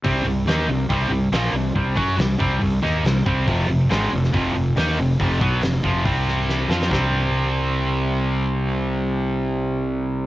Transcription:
<<
  \new Staff \with { instrumentName = "Distorted electric guitar" } { \clef bass \time 4/4 \key c \minor \tempo 4 = 140 <c g c'>8 <c g>8 <ees bes ees'>8 <c g>8 <c g c'>8 <c g>8 <bes, f bes>8 <c g>8 | <c g c'>8 <fis des' fis'>8 <c g>8 <c g c'>8 <c g>8 <ees bes ees'>8 <c g>8 <c g c'>8 | <f, c f>8 <f, c>8 <aes, ees aes>8 <f, c>8 <f, c f>8 <f, c>8 <ees bes ees'>8 <f, c>8 | <f, c f>8 <b, fis b>8 <f, c>8 <f, c f>8 <c g c'>4. <f c' f'>8 |
<c g c'>1~ | <c g c'>1 | }
  \new Staff \with { instrumentName = "Fingered electric bass" } { \clef bass \time 4/4 \key c \minor c,8 c,8 ees,8 c,8 c,8 c,8 bes,,8 c,8 | c,8 fis,8 c,8 c,8 c,8 ees,8 c,8 c,8 | f,,8 f,,8 aes,,8 f,,8 f,,8 f,,8 ees,8 f,,8 | f,,8 b,,8 f,,8 f,,8 c,4. f,8 |
c,1~ | c,1 | }
  \new DrumStaff \with { instrumentName = "Drums" } \drummode { \time 4/4 <hho bd>4 <hho sn>4 <hho bd>4 <hho sn>4 | <hho bd>8 bd8 <hho sn>8 bd8 <hho bd>8 sn8 <hho sn>8 bd8 | <hho bd>4 <hho sn>8. sn16 <hho bd>4 <hho sn>4 | <hho bd>8 bd8 <hho sn>8 bd8 <hho bd>8 sn8 sn8 sn16 sn16 |
<bd sn>4 r4 r4 r4 | r4 r4 r4 r4 | }
>>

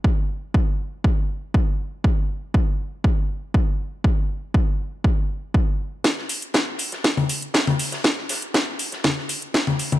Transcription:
\new DrumStaff \with { instrumentName = "Drums" } \drummode { \time 4/4 \tempo 4 = 120 bd4 bd4 bd4 bd4 | bd4 bd4 bd4 bd4 | bd4 bd4 bd4 bd4 | <hh bd sn>16 sn16 <hh hho>16 hh16 <hh bd sn>8 <hh hho>16 <hh sn>16 <hh bd sn>16 <cgl hh>16 <hh hho>16 hh16 <hh bd sn>16 <cgl hh>16 hho16 <hh sn>16 |
<hh bd sn>16 sn16 <hh hho sn>16 hh16 <hh bd sn>8 <hh hho>16 <hh sn>16 <cgl hh bd sn>16 sn16 <hh hho>16 hh16 <hh bd sn>16 <cgl hh>16 <hh hho>16 <cgl hh>16 | }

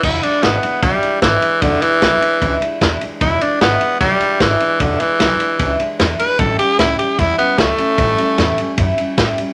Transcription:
<<
  \new Staff \with { instrumentName = "Tenor saxophone" } { \time 4/4 \key e \mixolydian \tempo 4 = 151 e'8 d'8 b4 g4 e4 | d8 e2 r4. | e'8 d'8 b4 g4 e4 | d8 e2 r4 b'8 |
a'8 g'8 e'8 g'8 e'8 b8 a4~ | a2 r2 | }
  \new Staff \with { instrumentName = "Steel-string acoustic guitar" } { \clef bass \time 4/4 \key e \mixolydian <e, b, e gis d' e'>8 <e gis d' e'>8 <e, b, e gis d' e'>8 <e gis d' e'>8 <e gis d' e'>8 <e gis d' e'>8 <e, b, e gis d' e'>8 <e gis d' e'>8 | <e, b, e gis d' e'>8 <e gis d' e'>8 <e, b, e gis d' e'>8 <e gis d' e'>8 <e gis d' e'>8 <e gis d' e'>8 <e, b, e gis d' e'>8 <e gis d' e'>8 | <e, b, e gis d' e'>8 <e gis d' e'>8 <e, b, e gis d' e'>8 <e gis d' e'>8 <e gis d' e'>8 <e gis d' e'>8 <e, b, e gis d' e'>8 <e gis d' e'>8 | <e, b, e gis d' e'>8 <e gis d' e'>8 <e, b, e gis d' e'>8 <e gis d' e'>8 <e gis d' e'>8 <e gis d' e'>8 <e, b, e gis d' e'>8 <e gis d' e'>8 |
<a, e g cis' e'>8 <g cis' e'>8 <a, e g cis' e'>8 <g cis' e'>8 <e g cis' e'>8 <g cis' e'>8 <a, e g cis' e'>8 <g cis' e'>8 | <a, e g cis' e'>8 <g cis' e'>8 <a, e g cis' e'>8 <g cis' e'>8 <e g cis' e'>8 <g cis' e'>8 <a, e g cis' e'>8 <g cis' e'>8 | }
  \new Staff \with { instrumentName = "Upright bass" } { \clef bass \time 4/4 \key e \mixolydian e,,8 r8 gis,,8 r8 b,,8 r8 gis,,8 r8 | e,,8 r8 b,,8 r8 cis,8 r8 e,8 r8 | e,,8 r8 gis,,8 r8 b,,8 r8 gis,,8 r8 | e,,8 r8 b,,8 r8 cis,8 r8 e,8 r8 |
a,,8 r8 cis,8 r8 e,8 r8 cis,8 r8 | a,,8 r8 e,8 r8 fis,8 r8 a,8 r8 | }
  \new DrumStaff \with { instrumentName = "Drums" } \drummode { \time 4/4 <cymc bd>8 cymr8 <cymr sn>8 cymr8 <bd cymr sn>8 cymr8 <bd cymr sn>8 cymr8 | <bd cymr>8 cymr8 <cymr sn>8 cymr8 <bd cymr>8 cymr8 <bd cymr sn>8 cymr8 | <bd cymr>8 cymr8 <cymr sn>8 cymr8 <bd cymr sn>8 cymr8 <bd cymr sn>8 cymr8 | <bd cymr>8 cymr8 <cymr sn>8 cymr8 <bd cymr>8 cymr8 <cymr sn>8 cymr8 |
<bd cymr>8 cymr8 <cymr sn>8 cymr8 <bd cymr sn>8 cymr8 <bd cymr sn>8 cymr8 | <bd cymr>8 cymr8 <cymr sn>8 cymr8 <bd cymr>8 cymr8 <bd cymr sn>8 cymr8 | }
>>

